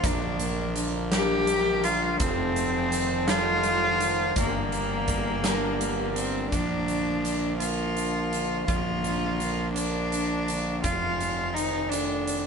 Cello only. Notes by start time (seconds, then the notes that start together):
0.07 D4
1.13 G4
1.84 F4
2.20 C4
3.29 F4
4.40 A#3
6.15 C4
6.51 D4
7.59 F4
8.67 F4
9.73 D4
10.83 F4
11.54 D#4
11.89 D4